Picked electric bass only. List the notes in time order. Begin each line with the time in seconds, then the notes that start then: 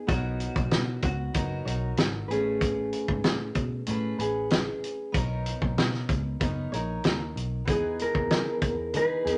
0.09 B1
0.56 B1
0.72 B2
1.03 C#2
1.35 F#1
1.66 B1
1.98 G#1
2.29 A1
3.09 G#2
3.25 A2
3.55 B2
3.88 A2
4.19 A1
5.14 B1
5.62 B1
5.77 B2
6.09 C#2
6.41 F#1
6.73 A#1
7.05 D#2
7.36 B1
7.67 E2
8.15 E2
8.31 E3
8.62 E2
8.94 E3
9.26 E2